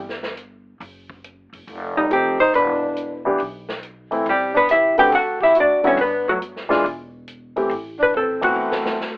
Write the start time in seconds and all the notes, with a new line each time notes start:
Already playing: G1 E3 G3 E4
0.09 snare
0.23 snare
0.37 closed hi-hat
0.80 F#1, open hi-hat
1.10 kick
1.24 closed hi-hat
1.53 F#1, open hi-hat
1.67 F1, open hi-hat
1.97 G3 D#4
2.10 F1 F3 A3 C4 D#4 G4, closed hi-hat
2.40 D#4 C5, open hi-hat
2.53 E1 D4 B4, open hi-hat
2.96 closed hi-hat
3.25 E3 B3 D4 G4
3.38 B1, open hi-hat
3.69 snare
3.83 closed hi-hat
4.11 E3 A3 C4 E4, open hi-hat
4.26 A1 G3 C4, open hi-hat
4.30 G4
4.54 B3 D4 B4
4.69 E4 G4 E5, closed hi-hat
4.98 D3 A3 C4 F#4 G4 B4 G5, open hi-hat
5.12 D2 F#4 A4 F#5, open hi-hat
5.41 E4 G4 E5, kick
5.55 F#4, closed hi-hat
5.60 D4 D5
5.83 D3 G3 B3 C#4 E4 F#4, open hi-hat
5.87 C#5
5.97 G1 D4 B4, open hi-hat
6.02 B3
6.28 F#3 A3 F#4
6.42 closed hi-hat
6.56 snare
6.69 F1 E3 G#3 D4 F4, snare, open hi-hat
6.84 E1, open hi-hat
7.28 closed hi-hat
7.56 E3 A3 C4 G4, open hi-hat
7.69 A1, open hi-hat
7.99 D4 B4
8.14 C4 A4, mid tom
8.41 E3 A3 B3 C4 F#4, kick, ride
8.56 D2
8.72 snare
8.86 snare
9.01 snare